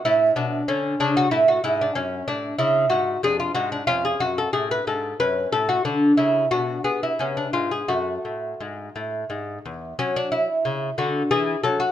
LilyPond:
<<
  \new Staff \with { instrumentName = "Lute" } { \time 3/4 \key a \major \tempo 4 = 92 << { e'8 d'8 cis'8 d'16 fis'16 e'16 fis'16 e'16 d'16 | \key fis \minor cis'8 d'8 e'8 fis'8 aes'16 f'16 fis'16 d'16 | eis'16 gis'16 fis'16 a'16 gis'16 b'16 a'8 b'8 a'16 fis'16 | d'8 e'8 fis'8 gis'16 e'16 cis'16 d'16 eis'16 gis'16 |
fis'2~ fis'8 r8 | cis'16 d'16 e'4 fis'8 gis'8 a'16 fis'16 | } \\ { cis'2. | r2 d'4 | cis'2 cis'4 | r4 d'4 b4 |
a2. | r2. | } >> }
  \new Staff \with { instrumentName = "Lute" } { \clef bass \time 3/4 \key a \major a,8 b,8 d8 cis8 a,8 gis,8 | \key fis \minor fis,8 a,8 cis8 gis,8 f,8 aes,8 | eis,8 fis,8 a,8 gis,8 fis,8 a,8 | d8 cis8 b,8 b8 cis8 gis,8 |
fis,8 a,8 gis,8 a,8 gis,8 e,8 | fis4 cis8 d8 e8 fis8 | }
>>